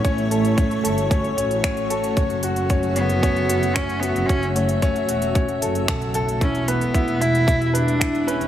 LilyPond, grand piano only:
\new Staff \with { instrumentName = "Grand piano" } { \time 4/4 \key fis \phrygian \tempo 4 = 113 cis'8 a'8 cis'8 a'8 cis'8 cis'8 cis'8 a'8 | cis'8 fis'8 cis'8 cis'8 cis'8 fis'8 cis'8 fis'8 | cis'8 cis'8 cis'8 fis'8 cis'8 a'8 a'8 a'8 | e'8 b'8 e'8 e'8 e'8 b'8 e'8 b'8 | }